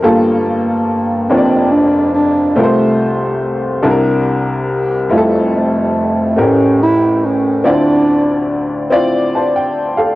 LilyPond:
<<
  \new Staff \with { instrumentName = "Upright piano" } { \time 6/8 \key f \major \tempo 4. = 47 << { r2. | r2. | r2. | r2 <c'' a''>16 g''8 <a' f''>16 | } \\ { <g bes f' a'>4 r8 <bes d' f' des'' d''>4 r8 | <a c' f' bes' c''>4 r8 <d' e' a' bes'>4 r8 | <g e' f' g' a'>4 r8 <a c' cis' g' bes'>4 r8 | <c' e' f' d''>4 r8 <c' e' f' d''>4 r8 | } >> }
  \new Staff \with { instrumentName = "Upright piano" } { \clef bass \time 6/8 \key f \major <g,, g,>4. <f,, f,>4. | <c, c>4. <c, c>4. | <f,, f,>4. <a,, a,>4. | <d, d>2. | }
  \new Staff \with { instrumentName = "Bass clarinet" } { \time 6/8 \key f \major bes8 bes4 c'8 d'8 d'8 | a4 r2 | a8 a4 cis'8 e'8 cis'8 | d'4 r2 | }
>>